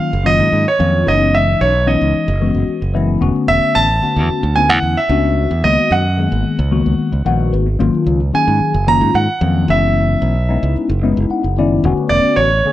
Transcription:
Already playing: F#3 A#3 C#4 F4 F5
0.13 F#1
0.24 D#3 F#3 A#3 C#4 F4 D#5
0.39 G#2
0.52 G#2
0.68 C#5
0.79 F2 D#3 F#3 A#3 C#4 F4
1.05 F#1 E3 G#3 B3 C#4 D#4 D#5
1.35 E5
1.61 B1 C#5
1.86 E3 G#3 B3 C#4 D#4 D#5
2.01 C#2
2.14 muted fingered electric bass stroke
2.28 F#1
2.40 E3 G#3 B3 C#4 F#4
2.55 F#1
2.68 muted fingered electric bass stroke
2.82 F#1
2.93 E3 G#3 B3 C#4 E4
3.20 E1 D3 A3 B3 C#4 F#4
3.36 muted fingered electric bass stroke
3.48 E1 E5
3.75 A1 A5
4.01 D3 A3 B3 C#4 F#4
4.16 E2
4.29 muted fingered electric bass stroke
4.43 D2
4.56 D3 A3 B3 C#4 E4 G#5
4.69 E2 F#5
4.83 E2
4.97 E5
5.09 C#2 A3 B3 C#4 D4 F#4
5.51 E2
5.64 C#2 D#3 G#3 A#3 B3 F#4 D#5
5.91 F#2 F#5
6.17 D#3 G#3 A#3 B3 G#4
6.32 G#1
6.45 muted fingered electric bass stroke
6.59 C#2
6.71 D#3 G#3 A#3 B3 F#4
6.86 C#2
6.99 muted fingered electric bass stroke
7.12 C#2
7.25 A#1 D#3 G#3 A#3 B3 F#4 F#5
7.53 G#1 B4
7.79 G#1 D#3 F#3 A#3 C#4 F4
7.94 muted fingered electric bass stroke
8.07 C#2
8.33 D#3 F#3 A#3 C#4 G#4 G#5, muted fingered electric bass stroke
8.48 G#2
8.60 muted fingered electric bass stroke
8.74 F#1
8.86 D#3 F#3 A#3 C#4 F4 A#5
9.01 G#2
9.14 G#2 F#5
9.41 F2 D#3 F#3 A#3 C#4 F4
9.68 F#1 E3 G#3 B3 C#4 E4 E5
10.22 B1
10.49 G#3 B3 C#4 D#4 E4
10.63 C#2
10.76 muted fingered electric bass stroke
10.89 F#1
11.03 G#3 B3 C#4 D#4 E4
11.17 F#1
11.30 F#5, muted fingered electric bass stroke
11.44 F#1
11.57 D#3 G#3 B3 C#4 E4 D5
11.84 E1 D3 A3 B3 C#4 F#4
11.97 muted fingered electric bass stroke
12.09 E1 D5
12.24 muted fingered electric bass stroke
12.36 A1 C#5
12.65 D3 A3 B3 C#4 G#4, muted fingered electric bass stroke

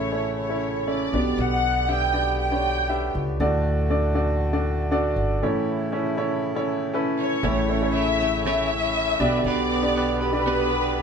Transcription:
Already playing: A1 A2 C#3 E3 A3 C#4 E4 A4 C#5 E5
0.12 C#4 E4 A4 C#5
0.38 C#5
0.49 C#4 E4 A4 C#5
0.87 C#4 E4 A4 C#5 D5
1.12 B1 B2 D3 B3 D4 G4 B4 D5
1.38 B1 F#5
1.88 D4 G4 B4 E5 G5
2.13 D4 G4 B4 D5
2.40 G5
2.52 D4 G4 B4 C#5
2.89 D4 G4 B4 E5
3.15 C#2
3.39 D2 A2 D3 A3 D4 F#4 A4 D5
3.90 D4 F#4 A4 D5
4.15 D4 F#4 A4 D5
4.53 D4 F#4 A4 D5
4.91 D4 F#4 A4 D5
5.16 G1
5.41 A2 C#3 E3 A3 C#4 E4 A4 C#5
5.92 C#4 E4 A4 C#5
6.17 C#4 E4 A4 C#5
6.55 C#4 E4 A4 C#5
6.94 C#4 E4 A4 B4
7.19 C#5
7.43 A1 A2 C#3 E3 A3 C#4 E4 A4 C#5
7.69 C#4 E4 A4 C#5
7.82 C#4 E4 A4 C#5
7.94 A3 C#4 E4 C#5 E5
8.20 A3 C#4 E4 C#5
8.45 A2 E3 A3 C#4 E4 C#5 E5
8.71 A3 C#4 E4 C#5
9.19 B1 B2 D3 B3 D4 G4 B4 D5
9.23 D4 G4
9.45 B1 B3 D4 G4 B4 D5
9.82 D4 G4 B4 D5
9.95 B3 D4 G4 B4
10.21 D4 G4 B4
10.32 D4 G4 A4 D5
10.39 B4
10.46 B3 D4 G4 B4
10.72 D4 G4 B4

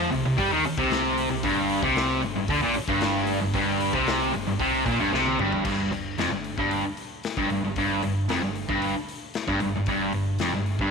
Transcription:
Already playing: F3
0.11 C2 C3, open hi-hat
0.25 C2 C3
0.37 G2 G3, kick, open hi-hat
0.51 D#2 D#3
0.64 muted picked electric bass stroke, muted distorted electric guitar stroke, open hi-hat
0.78 C2 C3, kick
0.91 snare, open hi-hat
1.17 open hi-hat
1.31 C2 C3
1.43 G1 G2, kick, open hi-hat
1.69 open hi-hat
1.83 C2 C3, kick
1.96 snare, open hi-hat
2.22 G1 G2, open hi-hat
2.36 G1 G2
2.48 D2 D3, kick, open hi-hat
2.62 A#1 A#2
2.74 muted distorted electric guitar stroke, muted picked electric bass stroke, open hi-hat
2.88 G1 G2, kick
3.01 snare, open hi-hat
3.27 open hi-hat
3.41 G1 G2
3.54 G1 G2, kick, open hi-hat
3.80 open hi-hat
3.93 C2 C3, kick
4.07 snare, open hi-hat
4.33 G1 G2, open hi-hat
4.47 G1 G2
4.60 C2 C3, kick, open hi-hat
4.86 A#1 A#2, kick, open hi-hat
5.00 G1 G2
5.12 C2 C3, snare
5.26 high tom
5.39 G1 G2, mid tom
5.52 floor tom
5.65 G1 G2, kick, crash
5.92 G1 G2, open hi-hat
6.18 F1 F2, snare, open hi-hat
6.31 G1 G2
6.44 open hi-hat
6.58 G1 G2, kick
6.71 open hi-hat
6.97 open hi-hat
7.23 snare, open hi-hat
7.37 G1 G2, kick
7.50 G1 G2, open hi-hat
7.63 G1 G2
7.76 G1 G2, kick, open hi-hat
8.02 G1 G2, open hi-hat
8.29 F1 F2, snare, open hi-hat
8.43 G1 G2
8.55 open hi-hat
8.68 G1 G2, kick
8.82 open hi-hat
9.08 open hi-hat
9.34 snare, open hi-hat
9.47 G1 G2, kick
9.60 G1 G2, open hi-hat
9.75 G1 G2
9.86 G1 G2, kick, open hi-hat
10.12 G1 G2, open hi-hat
10.39 F1 F2, snare, open hi-hat
10.52 G1 G2
10.66 open hi-hat
10.79 G1 G2, kick

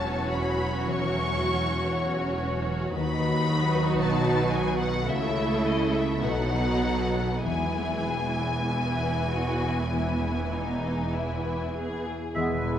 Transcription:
Already playing: E1 E2 E3 F#3 C#4 E4 F#4 C#5 F#5 A5
0.09 F#4
0.33 C#5 B5
0.60 F#4
0.87 E3 C#6
1.13 E4
1.39 F#4
1.66 C#5
1.92 F#5
2.18 F#4
2.44 C#5
2.70 F#4
2.95 D#2 D#3 F#3 D#4 F#4 B4 B5
3.21 D#4
3.49 F#4
3.74 B4
4.00 B1 B2 F#5 A5
4.26 F#4
4.52 B4 G#5
4.79 F#4 F#5
5.08 C#2 C#3 A3 E4 A4 E5
5.36 C#4
5.65 E4 D#5
5.93 A4 E5
6.22 B1 B2 F#3 B3 D#4 A4 F#5
6.53 F#3
6.82 D#4
7.14 F#4
7.43 E1 E2 E3 B3 E4 G#4 G#5
7.76 G#3
8.09 E4
8.40 G#4
8.70 E4 E5
9.02 B4
9.31 F#4 G#4
9.62 E4
9.92 E3 E4
10.21 G#3
10.53 D#4 E4
10.83 G#4
11.14 E4 E5
11.44 B4
11.75 G#4
12.06 E4
12.34 E1 E2 E3 G#3 B3 B4 E5 G#5
12.38 B3
12.65 G#3

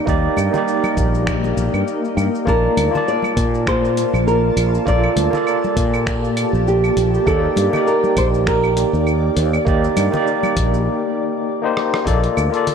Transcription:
Already playing: G3 A#3 D#4 G4 D5
0.06 D#2 A#3 D#4 G4 D5, kick, shaker
0.37 G2, high conga, claves, shaker
0.51 A#3 D#4, low conga, shaker
0.56 G4 D5
0.68 shaker
0.84 high conga, claves, shaker
0.97 A#1, kick, shaker
1.14 shaker
1.27 finger snap, kick, claves, shaker
1.44 high conga, shaker
1.57 A#1, shaker
1.74 G2, claves, shaker
1.88 shaker
2.05 shaker
2.17 G2, claves, shaker
2.35 shaker
2.45 A#1 A#3 F4 A#4 D5 A5, kick, shaker
2.77 D2, closed hi-hat, high conga, claves, shaker
2.91 A#3 F4
2.95 D5 A5, low conga, shaker
3.08 D5, shaker
3.22 high conga, claves, shaker
3.37 A#2, kick, closed hi-hat, shaker
3.54 shaker
3.67 C5, finger snap, kick, claves, shaker
3.85 shaker
3.97 closed hi-hat, shaker
4.13 A#1, claves, shaker
4.27 A#4, shaker
4.57 A#1, closed hi-hat, claves, shaker
4.74 shaker
4.86 A#1 A#3 F4 G4 A4 D5, kick, shaker
5.04 claves
5.16 D2, closed hi-hat, high conga, shaker
5.30 A#3 F4, low conga, shaker
5.35 A4 D5
5.47 claves, shaker
5.64 high conga, shaker
5.77 A#2, kick, closed hi-hat, shaker
5.94 claves, shaker
6.07 finger snap, kick, shaker
6.24 shaker
6.37 closed hi-hat, claves, shaker
6.53 A#1, shaker
6.67 G4, shaker
6.84 claves, shaker
6.97 A#1, closed hi-hat, shaker
7.14 shaker
7.26 D#2 D#3 A#3 D#4 G4 A4 D5, kick, claves, shaker
7.56 G2, closed hi-hat, high conga, shaker
7.70 A#3 D#4, low conga, claves, shaker
7.75 G4 D5
7.87 A#4, shaker
8.04 high conga, shaker
8.17 A#1 C5, kick, closed hi-hat, claves, shaker
8.34 shaker
8.47 A#4, finger snap, kick, shaker
8.64 claves, shaker
8.77 closed hi-hat, shaker
8.93 D#2, shaker
9.07 claves, shaker
9.36 D#2, closed hi-hat, shaker
9.53 claves, shaker
9.65 D#2 A#3 D#4 G4 D5, kick, shaker
9.84 shaker
9.96 G2, closed hi-hat, high conga, claves, shaker
10.10 A#3 D#4, low conga, shaker
10.15 G4 D5
10.27 shaker
10.43 high conga, claves, shaker
10.56 A#1, kick, closed hi-hat, shaker
10.74 shaker
11.62 A#3 D#4 G4 C5
11.77 cross-stick
11.94 cross-stick
12.05 A#1 A#3 F4 A4 D5, kick, closed hi-hat, shaker
12.24 closed hi-hat
12.37 D2, claves, shaker
12.50 A#3 F4, closed hi-hat
12.54 A4 D5, shaker
12.67 closed hi-hat, low conga, shaker

